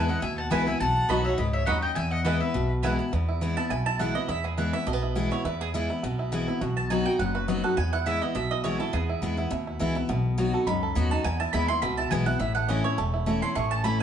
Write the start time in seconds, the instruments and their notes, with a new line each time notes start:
Already playing: upright bass E2, steel-string acoustic guitar E2
0.08 steel-string acoustic guitar B3 E4, fiddle D#5, mandolin F#5
0.22 upright bass D#2, steel-string acoustic guitar B2, fiddle E5, mandolin G#5
0.38 fiddle F#5, mandolin A5
0.51 upright bass C#2, steel-string acoustic guitar E3 G#3 B3 E4, mandolin B3 E4 B4 G#5 B5, five-string banjo B3 E4, fiddle G#5
0.67 steel-string acoustic guitar B3 E4, fiddle E5, mandolin G#5
0.80 upright bass B1, steel-string acoustic guitar B2, fiddle F#5, mandolin A5
1.09 upright bass B1, steel-string acoustic guitar F#3 B3 D#4 F#4, mandolin B3 F#4 D#5 B5, five-string banjo B3 D#4 F#4
1.24 steel-string acoustic guitar D#4 F#4, fiddle C#5, mandolin E5
1.38 upright bass C#2, steel-string acoustic guitar G#2, fiddle B4, mandolin D#5
1.53 fiddle C#5, mandolin E5
1.66 upright bass D#2, steel-string acoustic guitar F#2, mandolin B3 F#4 D#5 F#5 B5, five-string banjo B3 D#4 F#4, fiddle D#5
1.82 fiddle D#5, mandolin G5
1.95 steel-string acoustic guitar E2, upright bass E2, fiddle E5, mandolin G#5
2.11 fiddle D#5, mandolin F#5
2.24 steel-string acoustic guitar E3 G#3 B3 E4, mandolin B3 E4 B4 D#5 G#5, five-string banjo B3 E4, fiddle B4
2.40 steel-string acoustic guitar B3 E4, fiddle B4, mandolin E5
2.54 upright bass B1, steel-string acoustic guitar B2
2.83 steel-string acoustic guitar E3 G#3 B3 E4, mandolin B3 E4 B4 G#5, five-string banjo B3 E4
2.99 steel-string acoustic guitar B3 E4
3.13 steel-string acoustic guitar E2, upright bass E2, five-string banjo B3
3.29 five-string banjo E4
3.41 steel-string acoustic guitar E3 G#3 B3 E4, five-string banjo B3
3.57 steel-string acoustic guitar B3 E4, five-string banjo E4, mandolin A5
3.70 upright bass B1, steel-string acoustic guitar B2, five-string banjo E4, mandolin G#5
3.86 five-string banjo E4, mandolin A5
3.99 steel-string acoustic guitar E3 G#3 B3 E4, five-string banjo E4, mandolin F#5
4.15 steel-string acoustic guitar B3 E4, five-string banjo E4, mandolin D#5
4.29 upright bass E2, steel-string acoustic guitar E2, five-string banjo E4, mandolin E5
4.44 five-string banjo B3, mandolin G#4
4.57 steel-string acoustic guitar E3 G#3 B3 E4, five-string banjo E4, mandolin B4
4.73 steel-string acoustic guitar B3 E4, five-string banjo E4, mandolin E5
4.87 upright bass B1, steel-string acoustic guitar B2, five-string banjo A3, mandolin D#5
4.93 five-string banjo B3
5.02 five-string banjo E4
5.15 steel-string acoustic guitar E3 G#3 B3 E4, five-string banjo B3
5.31 steel-string acoustic guitar B3 E4, five-string banjo E4, mandolin C#5
5.45 upright bass E2, steel-string acoustic guitar E2, five-string banjo E4, mandolin B4
5.61 five-string banjo B3, mandolin G#4
5.74 steel-string acoustic guitar E3 G#3 B3 E4, five-string banjo E4
5.90 steel-string acoustic guitar B3 E4, five-string banjo E4
6.03 upright bass B1, steel-string acoustic guitar B2, five-string banjo B3
6.19 five-string banjo E4
6.32 steel-string acoustic guitar E3 G#3 B3 E4, five-string banjo B3
6.48 steel-string acoustic guitar B3 E4, five-string banjo E4
6.61 upright bass B1, steel-string acoustic guitar B2, five-string banjo F#4
6.77 mandolin A5
6.90 steel-string acoustic guitar F#3 B3 D#4 F#4, five-string banjo D#4, mandolin G#5
7.05 steel-string acoustic guitar D#4 F#4, five-string banjo F#4, mandolin G5
7.19 upright bass F#1, steel-string acoustic guitar F#2, five-string banjo B3, mandolin F#5
7.35 five-string banjo F#4, mandolin B4
7.48 steel-string acoustic guitar F#3 B3 D#4 F#4, five-string banjo B3, mandolin D#5
7.63 steel-string acoustic guitar D#4 F#4, five-string banjo A4, mandolin F#5
7.77 steel-string acoustic guitar E2, upright bass E2, five-string banjo B3, mandolin G#5
7.93 five-string banjo E4, mandolin F#5
8.06 steel-string acoustic guitar E3 G#3 B3 E4, five-string banjo B3, mandolin E5
8.21 steel-string acoustic guitar B3 E4, five-string banjo E4, mandolin D#5
8.35 upright bass B1, steel-string acoustic guitar B2, five-string banjo E4, mandolin E5
8.51 five-string banjo E4, mandolin D#5
8.64 steel-string acoustic guitar E3 G#3 B3 E4, five-string banjo E4, mandolin C#5
8.79 steel-string acoustic guitar B3 E4, five-string banjo E4, mandolin A4
8.93 steel-string acoustic guitar E2, upright bass E2, five-string banjo B3, mandolin G#4
9.09 five-string banjo E4
9.22 upright bass E2, steel-string acoustic guitar E3 G#3 B3 E4, five-string banjo B3
9.37 steel-string acoustic guitar B3 E4, five-string banjo E4
9.51 upright bass D#2, steel-string acoustic guitar B2, five-string banjo E4
9.67 five-string banjo E4
9.79 upright bass C#2, steel-string acoustic guitar E3 G#3 B3 E4, five-string banjo E4
9.95 steel-string acoustic guitar B3 E4, five-string banjo E4
10.09 upright bass B1, steel-string acoustic guitar B2, five-string banjo B3
10.38 steel-string acoustic guitar F#3 B3 D#4 F#4, five-string banjo B3
10.53 steel-string acoustic guitar D#4 F#4, five-string banjo A4
10.67 upright bass C#2, steel-string acoustic guitar F#2, five-string banjo D#4, mandolin B5
10.83 five-string banjo A4
10.95 upright bass D#2, steel-string acoustic guitar F#3 B3 D#4 F#4, five-string banjo F#4
11.11 five-string banjo D#4, steel-string acoustic guitar D#4 F#4, mandolin A5
11.24 steel-string acoustic guitar E2, upright bass E2, five-string banjo B3, mandolin G#5
11.40 five-string banjo E4, mandolin A5
11.53 upright bass D#2, steel-string acoustic guitar E3 G#3 B3 E4, five-string banjo E4, mandolin B5
11.68 steel-string acoustic guitar B3 E4, five-string banjo E4, mandolin C6
11.82 upright bass C#2, steel-string acoustic guitar B2, five-string banjo B3, mandolin B5
11.97 five-string banjo E4, mandolin A5
12.11 upright bass B1, steel-string acoustic guitar E3 G#3 B3 E4, five-string banjo B3, mandolin G#5
12.26 steel-string acoustic guitar B3 E4, five-string banjo E4, mandolin F#5
12.39 upright bass A1, steel-string acoustic guitar A2, five-string banjo E4, mandolin E5
12.55 five-string banjo A3, mandolin F#5
12.68 steel-string acoustic guitar E3 A3 C#4 E4, five-string banjo C#4, mandolin D#5
12.84 steel-string acoustic guitar C#4 E4, five-string banjo E4, mandolin C#5
12.98 upright bass E1, steel-string acoustic guitar E2, five-string banjo A4
13.14 five-string banjo E4
13.26 steel-string acoustic guitar E3 A3 C#4 E4, five-string banjo A3
13.42 steel-string acoustic guitar C#4 E4, five-string banjo E4, mandolin C6
13.55 upright bass A1, steel-string acoustic guitar A2, five-string banjo A3, mandolin C#6
13.71 five-string banjo C#4, mandolin A5
13.84 steel-string acoustic guitar E3 A3 C#4 E4, five-string banjo A4, mandolin B5